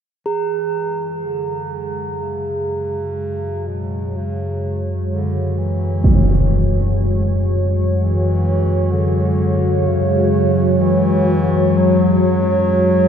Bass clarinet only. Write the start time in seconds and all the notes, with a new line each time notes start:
0.27 E3
1.25 D3
2.22 C#3
3.67 B2
4.16 C#3
5.11 D3
5.58 E3
7.98 E3
8.91 D3
9.87 C#3
10.80 E3
11.77 F#3